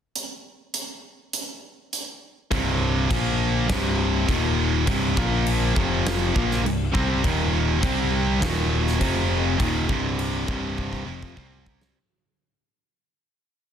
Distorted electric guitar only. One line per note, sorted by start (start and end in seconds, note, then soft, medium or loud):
2.51 3.09 C2 loud
2.51 3.10 G2 medium
2.51 3.10 C3 loud
3.10 3.68 A#2 medium
3.10 3.68 F3 medium
3.10 3.69 A#3 loud
3.69 4.27 C2 loud
3.69 4.27 G2 loud
3.69 4.28 C3 loud
4.27 4.86 D#2 loud
4.27 4.86 A#2 loud
4.27 4.86 D#3 loud
4.86 5.16 C2 medium
4.86 5.17 G2 loud
4.86 5.17 C3 loud
5.16 5.74 A#2 medium
5.16 5.74 F3 medium
5.16 5.75 A#3 loud
5.74 6.33 F2 medium
5.74 6.33 C3 medium
5.74 6.33 F3 loud
6.34 6.63 A#2 loud
6.34 6.63 F3 loud
6.34 6.63 A#3 loud
6.63 6.87 C2 medium
6.63 6.88 G2 medium
6.94 7.22 C3 loud
6.94 7.22 G3 medium
6.94 7.23 C4 loud
7.24 7.82 D#2 medium
7.24 7.82 A#2 medium
7.24 7.82 D#3 medium
7.83 8.41 C3 loud
7.83 8.41 G3 loud
7.83 8.41 C4 loud
8.42 9.00 D#2 loud
8.42 9.00 A#2 loud
8.42 9.00 D#3 loud
9.00 9.58 F2 medium
9.00 9.59 C3 loud
9.00 9.59 F3 loud
9.59 9.88 D#2 loud
9.59 9.88 A#2 loud
9.59 9.88 D#3 loud
9.89 10.46 C2 medium
9.89 10.46 G2 medium
9.89 10.47 C3 medium
10.47 11.06 C2 medium
10.47 11.06 G2 medium
10.47 11.05 C3 medium
11.06 11.35 F2 loud
11.06 11.34 C3 loud
11.06 11.36 F3 loud
11.36 11.94 C3 medium
11.36 11.94 G3 loud
11.36 11.95 C4 loud